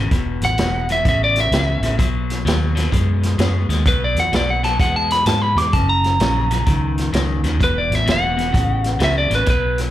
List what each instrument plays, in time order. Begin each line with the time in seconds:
Already playing: fingered electric bass G#1, clean electric guitar C#3
0.11 fingered electric bass E1, clean electric guitar E2 B2, kick, snare, closed hi-hat
0.42 fingered electric bass A1, lead electric guitar F#5, snare, closed hi-hat
0.58 fingered electric bass E1, clean electric guitar E2 B2, snare, closed hi-hat
0.89 clean electric guitar E2 B2, lead electric guitar E5, snare, closed hi-hat
1.05 fingered electric bass A1, clean electric guitar E2 C#3, lead electric guitar E5, kick, snare, closed hi-hat
1.24 lead electric guitar D5
1.36 snare, closed hi-hat
1.40 lead electric guitar E5
1.52 fingered electric bass C#2, clean electric guitar E2 C#3, snare, closed hi-hat
1.81 fingered electric bass A1, clean electric guitar E2 C#3, snare, closed hi-hat
1.98 fingered electric bass B1, clean electric guitar B2 F#3, kick, snare, closed hi-hat
2.30 snare, closed hi-hat
2.45 fingered electric bass D#2, clean electric guitar B2 F#3, snare, closed hi-hat
2.75 clean electric guitar B2 F#3, snare, closed hi-hat
2.91 fingered electric bass F#2, clean electric guitar B2 G#3, kick, snare, closed hi-hat
3.23 snare, closed hi-hat
3.38 fingered electric bass F#2, clean electric guitar B2 G#3, snare, closed hi-hat
3.69 fingered electric bass D#2, clean electric guitar B2 G#3, snare, closed hi-hat
3.85 fingered electric bass B1, clean electric guitar B2 F#3, lead electric guitar B4, kick, snare, closed hi-hat
4.04 lead electric guitar D5
4.15 fingered electric bass E2, snare, closed hi-hat
4.20 lead electric guitar F#5
4.31 fingered electric bass B1, clean electric guitar B2 F#3, snare, closed hi-hat
4.36 lead electric guitar D5
4.50 lead electric guitar F#5
4.63 clean electric guitar B2 F#3, lead electric guitar A5, snare, closed hi-hat
4.80 fingered electric bass E2, clean electric guitar B2 G#3, lead electric guitar F#5, kick, snare, closed hi-hat
4.96 lead electric guitar A5
5.11 lead electric guitar B5, snare, closed hi-hat
5.25 fingered electric bass G#2, clean electric guitar B2 G#3, lead electric guitar A5, snare, closed hi-hat
5.42 lead electric guitar B5
5.55 fingered electric bass E2, clean electric guitar B2 G#3, lead electric guitar D6, snare, closed hi-hat
5.73 fingered electric bass F#1, clean electric guitar F#2 C#3, lead electric guitar A5, kick, snare, closed hi-hat
5.89 lead electric guitar A#5
6.04 snare, closed hi-hat
6.19 fingered electric bass A#1, clean electric guitar F#2 C#3, snare, closed hi-hat
6.51 clean electric guitar F#2 C#3, snare, closed hi-hat
6.66 fingered electric bass C#2, clean electric guitar F#2 D#3, kick, snare, closed hi-hat
6.98 snare, closed hi-hat
7.13 fingered electric bass C#2, clean electric guitar F#2 D#3, snare, closed hi-hat
7.43 fingered electric bass D#2, clean electric guitar F#2 D#3, snare, closed hi-hat
7.60 fingered electric bass E1, clean electric guitar E2 B2, kick, snare, closed hi-hat
7.64 lead electric guitar B4
7.78 lead electric guitar D5
7.90 fingered electric bass A1, snare, closed hi-hat
7.95 lead electric guitar E5
8.06 fingered electric bass E1, clean electric guitar E2 B2, snare, closed hi-hat
8.12 lead electric guitar F#5
8.37 clean electric guitar E2 B2, snare, closed hi-hat
8.52 fingered electric bass A1, clean electric guitar E2 C#3, kick, snare, closed hi-hat
8.84 snare, closed hi-hat
8.99 fingered electric bass C#2, clean electric guitar E2 C#3, snare, closed hi-hat
9.04 lead electric guitar E5
9.18 lead electric guitar D5
9.30 fingered electric bass A1, clean electric guitar E2 C#3, snare, closed hi-hat
9.35 lead electric guitar B4
9.46 fingered electric bass B1, clean electric guitar B2 F#3, kick, snare, closed hi-hat
9.50 lead electric guitar B4
9.78 snare, closed hi-hat